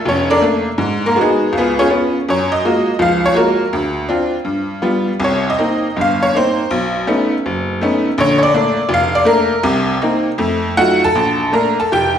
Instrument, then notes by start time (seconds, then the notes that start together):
honky-tonk piano
0.05 F1 C#5
0.10 C#4
0.30 D4 A4 A#4 D5
0.42 A3 A#3 D4
0.78 G#2
1.06 A#3 A#4
1.16 G#3 B3 F#4
1.21 G#3 B3 D#4 G#4
1.53 C#2
1.57 B3 F4 G#4 B4
1.79 C#4 F4 G#4 C#5
1.90 B3 C#4 F4
2.29 F#2 C#5
2.52 D#5
2.65 G#3 A#3 F4 F#4
2.99 C#2 F3 F5
3.26 C#5
3.34 G#3 A#3 F4 F#4 A#4
3.73 D2
4.09 C4 D4 F4
4.45 G2
4.82 G3 B3 F4
5.20 C2 C3
5.24 C#5
5.50 D#5
5.59 A#3 C4 D#4
5.96 G1 G2
6.01 F5
6.23 C#5
6.35 A#3 C4 D#4 C5
6.71 B1
7.07 A3 B3 C#4 D#4
7.46 F#1
7.81 A3 B3 C#4 D#4
8.18 A#1 D3 C#5
8.38 C#5
8.43 D5
8.54 A3 A#3 D4
8.89 F1
8.94 F5
9.15 D5
9.25 A3 A#3 D4 A#4
9.63 C2 C3
10.02 A#3 C4 D#4
10.38 F2 A3
10.77 F#3 A3 D#4 F4 F#4 F#5
11.04 A4 A5
11.15 A#1
11.52 A3 A#3 D4 A#4 A#5
11.80 A4 A5
11.92 F1 G4 G5